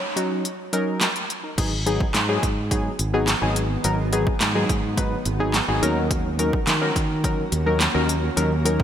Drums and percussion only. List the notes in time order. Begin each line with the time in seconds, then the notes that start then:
0.17 closed hi-hat
0.45 closed hi-hat
0.73 closed hi-hat
1.01 snare, clap, closed hi-hat
1.16 closed hi-hat
1.30 closed hi-hat
1.58 kick, closed hi-hat, crash
1.87 closed hi-hat
2.01 kick
2.14 snare, clap, closed hi-hat
2.43 kick, closed hi-hat
2.71 kick, closed hi-hat
2.99 closed hi-hat
3.27 snare, clap, closed hi-hat
3.56 closed hi-hat
3.84 closed hi-hat
4.13 closed hi-hat
4.27 kick
4.41 snare, clap, closed hi-hat
4.69 kick, closed hi-hat
4.98 kick, closed hi-hat
5.25 closed hi-hat
5.54 snare, clap, closed hi-hat
5.83 closed hi-hat
6.11 kick, closed hi-hat
6.39 closed hi-hat
6.53 kick
6.67 snare, clap, closed hi-hat
6.96 kick, closed hi-hat
7.24 kick, closed hi-hat
7.52 closed hi-hat
7.80 snare, clap, closed hi-hat
8.09 closed hi-hat
8.37 closed hi-hat
8.66 closed hi-hat
8.80 kick